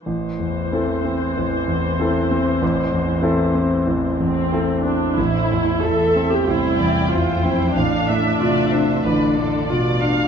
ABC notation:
X:1
M:4/4
L:1/16
Q:1/4=93
K:Am
V:1 name="Violin section"
z16 | z16 | c4 e4 g8 | f2 e6 d4 d4 |]
V:2 name="Violin section"
z16 | z16 | z8 c2 d2 c4 | f2 e2 d2 c2 B2 A2 d2 f2 |]
V:3 name="Viola section"
[E,c]16- | [E,c]8- [E,c]2 C4 D2 | E4 A3 G E4 F2 E2 | D8- D2 z6 |]
V:4 name="Grand piano"
A,,,2 E,,2 [CEA]2 C2 A,,,2 E,,2 [CEA]2 C2 | A,,,2 E,,2 [CEA]2 C2 A,,,2 E,,2 [CEA]2 C2 | A,,,2 E,,2 E2 C2 A,,,2 E,,2 E2 C2 | A,,,2 A,,2 F2 D2 A,,,2 A,,2 F2 D2 |]
V:5 name="Cello section" clef=bass
z16 | z16 | A,,4 E,,4 C,,4 F,,4 | A,,4 C,4 D,4 B,,4 |]
V:6 name="Double bass section" clef=bass
z16 | z16 | A,,,4 z12 | A,,,4 z12 |]